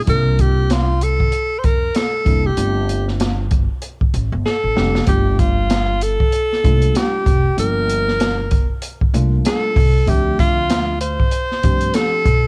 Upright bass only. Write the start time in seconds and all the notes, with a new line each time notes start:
0.08 C2
1.64 F2
2.26 F1
2.57 G1
4.14 A1
4.32 G1
4.64 A1
4.77 F1
5.07 G1
6.64 C2
7.26 F1
7.58 G1
9.14 C2
9.76 C2
10.08 D2
11.64 G2
12.26 B1